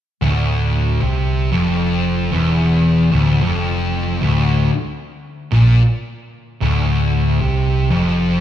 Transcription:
0.22 picked electric bass D1, distorted electric guitar D2
1.01 picked electric bass C2, distorted electric guitar C3
1.52 picked electric bass F1, distorted electric guitar F2
2.32 picked electric bass E1, distorted electric guitar E2
3.12 picked electric bass D1, distorted electric guitar D2
3.41 picked electric bass F1, distorted electric guitar F2
4.21 picked electric bass D1, distorted electric guitar D2
5.52 picked electric bass A#1, distorted electric guitar A#2
6.62 picked electric bass D1, distorted electric guitar D2
7.41 picked electric bass C2, distorted electric guitar C3
7.90 picked electric bass F1, distorted electric guitar F2

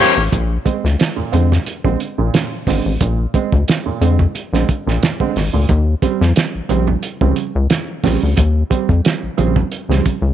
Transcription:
Already playing: upright piano F5
0.00 overdriven electric guitar G3 C#4 F4 C5, horn section A#3 G4 C#5, snare, open hi-hat
0.17 analog synth bass A1, muted overdriven electric guitar stroke, shaker
0.32 analog synth bass A#1, upright piano A#2, kick, closed hi-hat, muted conga
0.65 upright piano G#3 C4, kick, closed hi-hat, muted conga
0.84 analog synth bass D2, snare
0.99 upright piano G#3 C4, snare, closed hi-hat
1.16 analog synth bass F2, upright piano A#2
1.32 analog synth bass F2, upright piano D3 G#3 C4, closed hi-hat, muted conga, high conga
1.52 snare, high conga, low conga
1.66 closed hi-hat, muted conga
1.84 analog synth bass A#1, upright piano D3 G#3 C4, kick
2.00 closed hi-hat
2.18 analog synth bass A#1, upright piano A#2
2.34 upright piano A#2, snare, closed hi-hat, high conga
2.67 analog synth bass G#1, upright piano D3 G#3 C4, kick, snare, open hi-hat, low conga
2.85 analog synth bass A1, upright piano G#3 C4
3.01 analog synth bass A#1, upright piano A#2, kick, closed hi-hat, muted conga
3.34 upright piano G#3 C4, kick, closed hi-hat, muted conga
3.52 analog synth bass D2, kick
3.68 upright piano G#3 C4, snare, closed hi-hat, muted conga
3.86 analog synth bass F2, upright piano A#2
4.01 analog synth bass F2, upright piano D3 G#3 C4, closed hi-hat
4.19 kick, high conga, low conga
4.35 closed hi-hat, muted conga
4.53 analog synth bass A#1, upright piano D3 G#3 C4, snare
4.69 kick, closed hi-hat
4.87 analog synth bass A#1, upright piano A#2, snare
5.03 snare, closed hi-hat, high conga
5.20 upright piano D3 G#3 C4, kick
5.36 analog synth bass G#1, snare, open hi-hat, muted conga, low conga
5.53 analog synth bass D2, upright piano A#2
5.69 analog synth bass D#2, kick, closed hi-hat
6.02 upright piano G3 C4, kick, closed hi-hat, muted conga
6.21 analog synth bass F2, snare
6.36 upright piano G3 C4, snare, closed hi-hat
6.55 analog synth bass A#1
6.69 analog synth bass A#1, upright piano C#3 F3 G3 C4, closed hi-hat, muted conga, high conga
6.87 high conga, low conga
7.03 closed hi-hat, muted conga
7.21 analog synth bass C#2, upright piano C#3 F3 G3 C4, kick
7.36 closed hi-hat, muted conga
7.55 analog synth bass C#2
7.70 snare, closed hi-hat, muted conga, high conga
8.04 analog synth bass A#1, upright piano C#3 F3 G3 C4, kick, snare, open hi-hat, low conga
8.22 analog synth bass D2, upright piano G3 C4
8.36 analog synth bass D#2, kick, closed hi-hat, muted conga, low conga
8.70 upright piano G3 C4, kick, closed hi-hat, muted conga
8.89 analog synth bass F2, kick
9.05 upright piano G3 C4, snare, closed hi-hat
9.23 analog synth bass A#1
9.37 analog synth bass A#1, upright piano C#3 F3 G3 C4, closed hi-hat, muted conga, high conga
9.56 kick, high conga, low conga
9.72 closed hi-hat
9.89 analog synth bass C#2, upright piano C#3 F3 G3 C4, snare
10.06 kick, closed hi-hat
10.22 analog synth bass C#2

